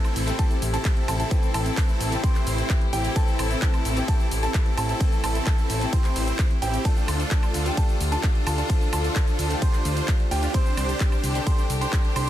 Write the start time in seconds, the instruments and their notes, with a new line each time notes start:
Already playing: string section C3 A3 E4, steel-string acoustic guitar E3 A3 C4 A4, supersaw synth C4 E4 A4, grand piano A5
0.04 closed hi-hat, cabasa, high woodblock
0.16 analog synth bass A1, open hi-hat, cabasa
0.26 steel-string acoustic guitar E3 A3 C4 G4, closed hi-hat, cabasa
0.39 supersaw synth C4 E4 A4, grand piano A5, kick, closed hi-hat, ride, cabasa
0.51 closed hi-hat, cabasa
0.62 analog synth bass A1, open hi-hat, cabasa
0.73 supersaw synth C4 E4 A4, grand piano A5, closed hi-hat, cabasa
0.85 kick, clap, closed hi-hat, ride, cabasa
0.97 closed hi-hat
1.08 analog synth bass A1, supersaw synth C4 E4 A4, grand piano A5, open hi-hat, cabasa, high woodblock
1.20 supersaw synth C4 E4 A4, grand piano A5, closed hi-hat, cabasa
1.30 steel-string acoustic guitar E3 A3 C4 A4, kick, closed hi-hat, ride, cabasa
1.43 closed hi-hat, cabasa
1.54 analog synth bass A1, supersaw synth C4 E4 A4, grand piano A5, open hi-hat, cabasa, high woodblock
1.66 closed hi-hat, cabasa
1.77 kick, clap, closed hi-hat, ride, cabasa
1.89 closed hi-hat, cabasa
2.01 analog synth bass A1, open hi-hat, cabasa
2.11 steel-string acoustic guitar E3 A3 C4 G4, closed hi-hat, cabasa
2.23 supersaw synth C4 E4 C5, grand piano C6, kick, closed hi-hat, ride, cabasa
2.35 clap, closed hi-hat, cabasa
2.47 analog synth bass A1, open hi-hat, cabasa
2.58 closed hi-hat, cabasa
2.70 kick, clap, closed hi-hat, ride, cabasa
2.81 closed hi-hat
2.93 analog synth bass A1, supersaw synth C4 E4 G4, grand piano G5, open hi-hat, cabasa
3.05 closed hi-hat, cabasa
3.15 steel-string acoustic guitar E3 A3 C4 A4, supersaw synth C4 E4 A4, grand piano A5, kick, closed hi-hat, ride, cabasa
3.28 closed hi-hat, cabasa
3.39 analog synth bass A1, open hi-hat, cabasa, high woodblock
3.51 closed hi-hat, cabasa
3.62 kick, clap, closed hi-hat, ride, cabasa
3.74 closed hi-hat, cabasa, high woodblock
3.85 analog synth bass A1, open hi-hat, cabasa
3.96 steel-string acoustic guitar E3 A3 C4 G4, closed hi-hat, cabasa
4.08 supersaw synth C4 E4 A4, grand piano A5, kick, closed hi-hat, ride, cabasa
4.20 closed hi-hat, cabasa
4.31 analog synth bass A1, open hi-hat, cabasa
4.43 supersaw synth C4 E4 A4, grand piano A5, closed hi-hat, cabasa
4.54 kick, clap, closed hi-hat, ride, cabasa
4.66 closed hi-hat
4.77 analog synth bass A1, supersaw synth C4 E4 A4, grand piano A5, open hi-hat, cabasa, high woodblock
4.89 supersaw synth C4 E4 A4, grand piano A5, closed hi-hat, cabasa
4.99 steel-string acoustic guitar E3 A3 C4 A4, kick, closed hi-hat, ride, cabasa
5.12 closed hi-hat, cabasa
5.24 analog synth bass A1, supersaw synth C4 E4 A4, grand piano A5, open hi-hat, cabasa, high woodblock
5.35 closed hi-hat, cabasa
5.47 kick, clap, closed hi-hat, ride, cabasa
5.58 closed hi-hat, cabasa
5.70 analog synth bass A1, open hi-hat, cabasa
5.80 steel-string acoustic guitar E3 A3 C4 G4, closed hi-hat, cabasa
5.93 supersaw synth C4 E4 C5, grand piano C6, kick, closed hi-hat, ride, cabasa
6.04 clap, closed hi-hat, cabasa
6.16 analog synth bass A1, open hi-hat, cabasa
6.28 closed hi-hat, cabasa
6.39 kick, clap, closed hi-hat, ride, cabasa
6.51 closed hi-hat
6.62 analog synth bass A1, supersaw synth C4 E4 G4, grand piano G5, open hi-hat, cabasa
6.74 closed hi-hat, cabasa
6.84 string section D3 F4, steel-string acoustic guitar F3 A3 D4 A4, supersaw synth D4 F4 A4, grand piano A5, kick, closed hi-hat, ride, cabasa
6.97 closed hi-hat, cabasa
7.08 analog synth bass D2, open hi-hat, cabasa, high woodblock
7.20 closed hi-hat, cabasa
7.31 kick, clap, closed hi-hat, ride, cabasa
7.43 closed hi-hat, cabasa, high woodblock
7.54 analog synth bass D2, open hi-hat, cabasa
7.65 steel-string acoustic guitar F3 A3 D4 G4, closed hi-hat, cabasa
7.77 supersaw synth D4 F4 A4, grand piano A5, kick, closed hi-hat, ride, cabasa
7.89 closed hi-hat, cabasa
8.00 analog synth bass D2, open hi-hat, cabasa
8.12 supersaw synth D4 F4 A4, grand piano A5, closed hi-hat, cabasa
8.23 kick, clap, closed hi-hat, ride, cabasa
8.35 closed hi-hat
8.47 analog synth bass D2, supersaw synth D4 F4 A4, grand piano A5, open hi-hat, cabasa, high woodblock
8.58 supersaw synth D4 F4 A4, grand piano A5, closed hi-hat, cabasa
8.69 steel-string acoustic guitar F3 A3 D4 A4, kick, closed hi-hat, ride, cabasa
8.81 closed hi-hat, cabasa
8.93 analog synth bass D2, supersaw synth D4 F4 A4, grand piano A5, open hi-hat, cabasa, high woodblock
9.04 closed hi-hat, cabasa
9.16 kick, clap, closed hi-hat, ride, cabasa
9.28 closed hi-hat, cabasa
9.39 analog synth bass D2, open hi-hat, cabasa
9.49 steel-string acoustic guitar F3 A3 D4 G4, closed hi-hat, cabasa
9.62 supersaw synth D4 F4 C5, grand piano C6, kick, closed hi-hat, ride, cabasa
9.73 clap, closed hi-hat, cabasa
9.85 analog synth bass D2, open hi-hat, cabasa
9.97 closed hi-hat, cabasa
10.08 kick, clap, closed hi-hat, ride, cabasa
10.20 closed hi-hat
10.31 analog synth bass D2, supersaw synth D4 F4 G4, grand piano G5, open hi-hat, cabasa
10.43 closed hi-hat, cabasa
10.53 steel-string acoustic guitar G3 C4 D4 C5, string section C4 G4, supersaw synth D4 G4 C5, grand piano C6, kick, closed hi-hat, ride, cabasa
10.66 closed hi-hat, cabasa
10.77 analog synth bass C2, open hi-hat, cabasa, high woodblock
10.89 closed hi-hat, cabasa
11.00 kick, clap, closed hi-hat, ride, cabasa
11.12 closed hi-hat, cabasa, high woodblock
11.23 analog synth bass C2, open hi-hat, cabasa
11.34 steel-string acoustic guitar G3 C4 D4 A4, closed hi-hat, cabasa
11.47 supersaw synth D4 G4 C5, grand piano C6, kick, closed hi-hat, ride, cabasa
11.58 closed hi-hat, cabasa
11.70 analog synth bass C2, open hi-hat, cabasa
11.81 supersaw synth D4 G4 C5, grand piano C6, closed hi-hat, cabasa
11.93 kick, clap, closed hi-hat, ride, cabasa
12.04 closed hi-hat
12.16 analog synth bass C2, supersaw synth D4 G4 C5, grand piano C6, open hi-hat, cabasa, high woodblock